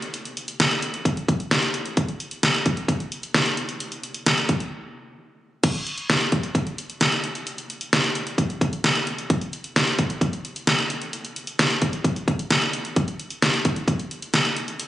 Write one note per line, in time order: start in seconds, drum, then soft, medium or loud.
0.02 closed hi-hat medium
0.14 closed hi-hat medium
0.25 closed hi-hat soft
0.37 closed hi-hat medium
0.48 closed hi-hat medium
0.60 snare loud
0.60 closed hi-hat medium
0.71 closed hi-hat medium
0.82 closed hi-hat medium
0.94 closed hi-hat medium
1.05 kick medium
1.05 closed hi-hat medium
1.17 closed hi-hat soft
1.28 kick medium
1.28 closed hi-hat medium
1.40 closed hi-hat medium
1.51 snare loud
1.51 closed hi-hat medium
1.63 closed hi-hat medium
1.74 closed hi-hat medium
1.86 closed hi-hat medium
1.97 kick loud
1.97 closed hi-hat medium
2.09 closed hi-hat soft
2.20 closed hi-hat medium
2.31 closed hi-hat medium
2.43 snare loud
2.43 closed hi-hat medium
2.55 closed hi-hat medium
2.66 kick medium
2.66 closed hi-hat medium
2.77 closed hi-hat medium
2.88 kick medium
2.88 closed hi-hat medium
3.00 closed hi-hat soft
3.12 closed hi-hat medium
3.23 closed hi-hat medium
3.34 snare loud
3.34 closed hi-hat medium
3.46 closed hi-hat medium
3.57 closed hi-hat medium
3.69 closed hi-hat medium
3.80 closed hi-hat medium
3.92 closed hi-hat soft
4.03 closed hi-hat medium
4.14 closed hi-hat medium
4.26 snare loud
4.26 closed hi-hat medium
4.38 closed hi-hat medium
4.49 kick loud
4.49 closed hi-hat medium
4.60 closed hi-hat medium
5.64 kick loud
5.64 closed hi-hat medium
5.64 crash loud
5.75 closed hi-hat soft
5.87 closed hi-hat medium
5.98 closed hi-hat medium
6.10 snare loud
6.10 closed hi-hat medium
6.21 closed hi-hat medium
6.32 kick loud
6.32 closed hi-hat medium
6.43 closed hi-hat medium
6.55 kick medium
6.55 closed hi-hat medium
6.67 closed hi-hat soft
6.78 closed hi-hat medium
6.90 closed hi-hat medium
7.01 snare loud
7.01 closed hi-hat medium
7.12 closed hi-hat medium
7.24 closed hi-hat medium
7.35 closed hi-hat medium
7.47 closed hi-hat medium
7.58 closed hi-hat soft
7.70 closed hi-hat medium
7.81 closed hi-hat medium
7.93 snare loud
7.93 closed hi-hat medium
8.04 closed hi-hat medium
8.15 closed hi-hat medium
8.27 closed hi-hat medium
8.38 kick medium
8.38 closed hi-hat medium
8.50 closed hi-hat soft
8.61 kick medium
8.61 closed hi-hat medium
8.73 closed hi-hat medium
8.84 snare loud
8.84 closed hi-hat medium
8.96 closed hi-hat medium
9.07 closed hi-hat medium
9.19 closed hi-hat medium
9.30 kick loud
9.30 closed hi-hat medium
9.41 closed hi-hat medium
9.53 closed hi-hat medium
9.64 closed hi-hat medium
9.76 snare loud
9.76 closed hi-hat medium
9.88 closed hi-hat medium
9.99 kick loud
9.99 closed hi-hat medium
10.10 closed hi-hat medium
10.21 kick medium
10.21 closed hi-hat medium
10.33 closed hi-hat soft
10.45 closed hi-hat medium
10.56 closed hi-hat medium
10.67 snare loud
10.67 closed hi-hat medium
10.79 closed hi-hat medium
10.90 closed hi-hat medium
11.02 closed hi-hat medium
11.13 closed hi-hat medium
11.25 closed hi-hat soft
11.36 closed hi-hat medium
11.47 closed hi-hat medium
11.59 snare loud
11.59 closed hi-hat medium
11.71 closed hi-hat medium
11.82 kick medium
11.82 closed hi-hat medium
11.93 closed hi-hat medium
12.04 kick medium
12.04 closed hi-hat medium
12.16 closed hi-hat soft
12.28 kick medium
12.28 closed hi-hat medium
12.39 closed hi-hat medium
12.51 snare loud
12.51 closed hi-hat medium
12.62 closed hi-hat medium
12.73 closed hi-hat medium
12.85 closed hi-hat medium
12.96 kick loud
12.96 closed hi-hat medium
13.08 closed hi-hat medium
13.20 closed hi-hat medium
13.30 closed hi-hat medium
13.42 snare loud
13.42 closed hi-hat medium
13.54 closed hi-hat medium
13.65 kick loud
13.65 closed hi-hat medium
13.76 closed hi-hat medium
13.88 kick medium
13.88 closed hi-hat medium
14.00 closed hi-hat soft
14.11 closed hi-hat medium
14.22 closed hi-hat medium
14.34 snare loud
14.34 closed hi-hat medium
14.45 closed hi-hat medium
14.57 closed hi-hat medium
14.68 closed hi-hat medium
14.80 closed hi-hat medium